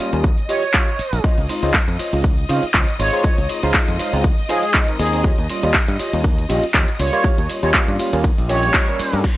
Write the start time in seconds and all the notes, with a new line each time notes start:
Already playing: D#5 D#6
0.00 F4 G4 C#5 F5
0.13 D#2 G3 A#3 C#4 F4, closed hi-hat, shaker
0.24 kick, closed hi-hat, shaker
0.38 closed hi-hat, shaker
0.49 F4 G4 C#5 D#5, open hi-hat, shaker
0.63 closed hi-hat, shaker
0.74 F4 G4 C#5 F5, kick, clap, closed hi-hat, shaker
0.88 closed hi-hat, shaker
0.99 muted fingered electric bass stroke, muted clean electric guitar stroke, open hi-hat, shaker
1.13 A#1, open hi-hat, shaker
1.24 F4 C5 C#5 D#5 D#6, kick, closed hi-hat, ride, shaker
1.38 C#2, closed hi-hat
1.49 G#3 C4 D#4 F4, muted clean electric guitar stroke, open hi-hat, ride, shaker
1.62 C#2 G#3 C4 D#4 F4 C5 C#5 D#5, closed hi-hat, shaker
1.74 kick, clap, closed hi-hat, ride, shaker
1.88 F2, closed hi-hat, shaker
1.99 F4 C5 C#5 D#5, muted fingered electric bass stroke, open hi-hat, ride, shaker
2.12 C#2 G#3 C4 D#4 F4, closed hi-hat, shaker
2.24 kick, closed hi-hat, ride, shaker
2.38 closed hi-hat, shaker
2.49 C#3 G#3 C4 D#4 F4 C5 C#5 F5, open hi-hat, ride, shaker
2.63 muted fingered electric bass stroke, closed hi-hat, shaker
2.74 C#2 F4 C5 C#5 D#5, kick, clap, closed hi-hat, ride, shaker
2.88 closed hi-hat, shaker
2.99 G#1 G#3 C4 D#4 F4 C#5, muted clean electric guitar stroke, open hi-hat, ride, shaker
3.13 G#3 C4 D#4 F4, closed hi-hat, shaker
3.24 F4 C5 C#5 D#5, muted fingered electric bass stroke, kick, closed hi-hat, ride, shaker
3.38 C#2, closed hi-hat
3.49 G#3 C4 D#4 F4, muted clean electric guitar stroke, open hi-hat, ride, shaker
3.63 C#2 G#3 D#4 F4 C5 C#5 F5, closed hi-hat, shaker
3.74 kick, clap, closed hi-hat, ride, shaker
3.88 F2, closed hi-hat, shaker
3.99 F4 C5 C#5 F5, muted fingered electric bass stroke, open hi-hat, ride, shaker
4.13 C#2 G#3 C4 D#4 F4, closed hi-hat, shaker
4.24 kick, closed hi-hat, ride, shaker
4.38 closed hi-hat, shaker
4.49 G#3 D#4 F4 G#4 C5 C#5 F5, open hi-hat, ride, shaker
4.63 G#4, closed hi-hat, shaker
4.74 F4 C5 C#5 D#5, kick, clap, closed hi-hat, ride, shaker
4.88 G#3 C4 D#4 A#4, closed hi-hat, shaker
4.99 D#2 G#3 C4 D#4 F4 G#4, muted clean electric guitar stroke, open hi-hat, ride, shaker
5.13 G#3 C4 D#4 G#4, open hi-hat, shaker
5.24 F4 G4 C#5 D#5, kick, closed hi-hat, ride, shaker
5.38 D#2, closed hi-hat
5.49 G3 A#3 C#4 F4, muted clean electric guitar stroke, open hi-hat, ride, shaker
5.63 D#2 G3 A#3 C#4 F4 G4 C#5 D#5, closed hi-hat, shaker
5.74 kick, clap, closed hi-hat, ride, shaker
5.88 G2, closed hi-hat, shaker
5.99 F4 G4 C#5 D#5, muted fingered electric bass stroke, open hi-hat, ride, shaker
6.13 D#2 G3 A#3 C#4 F4, closed hi-hat, shaker
6.24 kick, closed hi-hat, ride, shaker
6.38 closed hi-hat, shaker
6.49 A#1 G3 A#3 C#4 F4 G4 C#5 D#5, open hi-hat, ride, shaker
6.63 closed hi-hat, shaker
6.74 D#2 F4 G4 C#5 D#5, kick, clap, closed hi-hat, ride, shaker
6.88 closed hi-hat, shaker
6.99 C#2 G3 A#3 C#4 F4 C#5, open hi-hat, ride, shaker
7.12 G3 A#3 C#4 F4, closed hi-hat, shaker
7.24 F4 G4 C#5 F5, muted fingered electric bass stroke, kick, closed hi-hat, ride, shaker
7.38 D#2, closed hi-hat
7.49 G3 A#3 C#4 F4, muted clean electric guitar stroke, open hi-hat, ride, shaker
7.62 D#2 G3 A#3 C#4 F4 G4 C#5 D#5, closed hi-hat, shaker
7.74 kick, clap, closed hi-hat, ride, shaker
7.88 G2, closed hi-hat, shaker
7.99 F4 G4 C#5 F5, muted fingered electric bass stroke, open hi-hat, ride, shaker
8.13 D#2 G3 A#3 C#4 F4, closed hi-hat, shaker
8.24 kick, closed hi-hat, ride, shaker
8.38 A#1, closed hi-hat, shaker
8.49 G3 A#3 C#4 F4 G4 C#5 D#5, open hi-hat, ride, shaker
8.63 closed hi-hat, shaker
8.74 F4 G4 C#5 D#5, kick, clap, closed hi-hat, ride, shaker
8.88 G3 A#3 C#4 A#4, closed hi-hat, shaker
8.99 G3 A#3 C#4 F4, muted clean electric guitar stroke, muted fingered electric bass stroke, open hi-hat, ride, shaker
9.13 G2 G3 A#3 C#4 G4, open hi-hat, shaker
9.24 muted clean electric guitar stroke, muted fingered electric bass stroke, kick, closed hi-hat, crash